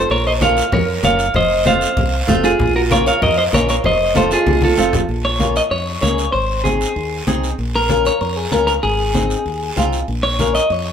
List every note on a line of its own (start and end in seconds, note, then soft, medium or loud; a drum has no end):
0.00 0.11 C5 medium
0.10 0.60 A#1 medium
0.10 0.25 A#4 medium
0.10 0.25 C#5 loud
0.10 high conga soft
0.10 long guiro medium
0.27 0.32 C5 medium
0.27 0.32 D#5 medium
0.41 0.63 A#3 medium
0.41 0.63 C#4 medium
0.41 0.63 F4 medium
0.41 0.71 C#5 medium
0.41 0.71 F5 medium
0.41 high conga medium
0.41 short guiro medium
0.57 short guiro medium
0.72 0.97 F2 medium
0.72 1.02 A#4 medium
0.72 1.03 C#5 medium
0.72 high conga soft
0.72 low conga medium
0.72 long guiro medium
1.03 1.28 F#1 medium
1.03 1.25 A#3 medium
1.03 1.25 C#4 medium
1.03 1.25 F4 medium
1.03 1.33 C#5 medium
1.03 1.33 F5 medium
1.03 high conga medium
1.03 short guiro medium
1.19 short guiro medium
1.34 1.84 F1 medium
1.34 1.64 C5 medium
1.34 1.67 D#5 medium
1.34 high conga soft
1.34 low conga medium
1.34 long guiro medium
1.65 1.87 A3 medium
1.65 1.87 C4 medium
1.65 1.88 F4 medium
1.65 2.40 C5 medium
1.65 2.47 F5 medium
1.65 high conga medium
1.65 short guiro medium
1.81 short guiro medium
1.96 2.22 C2 loud
1.96 high conga soft
1.96 low conga medium
1.96 long guiro medium
2.27 2.53 F1 loud
2.27 2.50 A3 medium
2.27 2.50 C4 medium
2.27 2.50 F4 loud
2.27 high conga medium
2.27 low conga medium
2.27 short guiro medium
2.44 2.73 F4 medium
2.44 2.73 G#4 medium
2.44 short guiro medium
2.59 3.09 A#1 medium
2.59 high conga soft
2.59 low conga medium
2.59 long guiro medium
2.76 2.81 F#4 medium
2.76 2.81 A#4 medium
2.90 3.12 A#3 medium
2.90 3.12 C#4 medium
2.90 3.12 F4 medium
2.90 3.06 A#4 medium
2.90 3.06 C#5 medium
2.90 high conga medium
2.90 short guiro medium
3.06 3.21 C#5 medium
3.06 3.21 F5 medium
3.06 short guiro medium
3.21 3.46 F2 medium
3.21 3.37 A#4 medium
3.21 3.37 D#5 medium
3.21 high conga soft
3.21 low conga medium
3.21 long guiro medium
3.38 3.43 C5 medium
3.38 3.43 D#5 medium
3.52 3.78 A#1 loud
3.52 3.75 A#3 medium
3.52 3.75 C#4 medium
3.52 3.75 F4 medium
3.52 3.68 A#4 medium
3.52 3.69 C#5 medium
3.52 high conga medium
3.52 short guiro medium
3.69 3.75 A#4 medium
3.69 3.75 C#5 medium
3.69 short guiro medium
3.84 4.34 F1 medium
3.84 4.14 C5 medium
3.84 4.14 D#5 medium
3.84 high conga soft
3.84 low conga medium
3.84 long guiro medium
4.14 4.37 A3 medium
4.14 4.37 C4 medium
4.14 4.37 F4 medium
4.14 4.30 A4 medium
4.14 4.31 C5 medium
4.14 high conga medium
4.14 short guiro medium
4.31 4.61 F4 medium
4.31 4.61 G#4 medium
4.31 short guiro medium
4.46 4.71 C2 medium
4.46 high conga medium
4.46 long guiro medium
4.62 4.92 F4 medium
4.62 4.92 A4 medium
4.62 high conga medium
4.77 5.02 F1 medium
4.77 4.99 A3 medium
4.77 4.99 C4 medium
4.77 4.99 F4 medium
4.77 short guiro medium
4.93 low conga loud
4.93 short guiro medium
5.08 5.58 A#1 medium
5.08 high conga soft
5.08 long guiro medium
5.25 5.56 C#5 medium
5.39 5.61 A#3 medium
5.39 5.62 C#4 medium
5.39 5.62 F4 medium
5.39 high conga medium
5.39 short guiro medium
5.56 5.62 D#5 medium
5.56 short guiro medium
5.71 5.96 F2 medium
5.71 6.00 C#5 medium
5.71 high conga soft
5.71 long guiro medium
6.02 6.27 C#2 medium
6.02 6.24 A#3 medium
6.02 6.24 C#4 medium
6.02 6.24 G#4 medium
6.02 6.31 C#5 medium
6.02 high conga medium
6.02 short guiro medium
6.18 short guiro medium
6.32 6.83 G#1 medium
6.32 6.62 C5 medium
6.32 high conga soft
6.32 long guiro medium
6.64 6.86 C4 medium
6.64 6.87 D#4 medium
6.64 7.23 G#4 medium
6.64 6.87 G#4 medium
6.64 high conga medium
6.64 short guiro medium
6.81 short guiro medium
6.96 7.21 D#2 medium
6.96 high conga soft
6.96 long guiro medium
7.27 7.52 C2 medium
7.27 7.49 C4 medium
7.27 7.49 D#4 medium
7.27 7.49 G#4 medium
7.27 high conga medium
7.27 short guiro medium
7.44 short guiro medium
7.58 8.08 A#1 medium
7.58 high conga soft
7.58 long guiro medium
7.75 8.06 A#4 loud
7.89 8.11 C#4 medium
7.89 8.11 F4 medium
7.89 8.12 A#4 medium
7.89 high conga medium
7.89 short guiro medium
8.05 8.21 C#5 medium
8.05 short guiro medium
8.21 8.46 F2 medium
8.21 8.37 A#4 medium
8.21 high conga soft
8.21 long guiro medium
8.37 8.52 G#4 medium
8.51 8.77 C#2 medium
8.51 8.74 C#4 medium
8.51 8.74 F4 medium
8.51 8.66 A#4 medium
8.51 8.74 A#4 medium
8.51 high conga medium
8.51 short guiro medium
8.67 8.72 A#4 medium
8.67 short guiro medium
8.83 9.33 G#1 medium
8.83 9.88 G#4 medium
8.83 high conga soft
8.83 long guiro medium
9.14 9.36 C4 medium
9.14 9.36 D#4 medium
9.14 9.37 G#4 medium
9.14 high conga medium
9.14 short guiro medium
9.30 short guiro medium
9.45 9.71 D#2 medium
9.45 high conga soft
9.45 long guiro medium
9.76 10.02 C2 medium
9.76 9.98 C4 medium
9.76 9.99 D#4 medium
9.76 9.99 F4 medium
9.76 high conga medium
9.76 short guiro medium
9.93 short guiro medium
10.08 10.58 A#1 medium
10.08 high conga soft
10.08 long guiro medium
10.23 10.52 C#5 medium
10.39 10.61 C#4 medium
10.39 10.61 F4 medium
10.39 10.61 A#4 medium
10.39 high conga medium
10.39 short guiro medium
10.55 10.72 D#5 medium
10.55 short guiro medium
10.70 10.93 F2 medium
10.70 10.93 C#5 loud
10.70 high conga soft
10.70 long guiro medium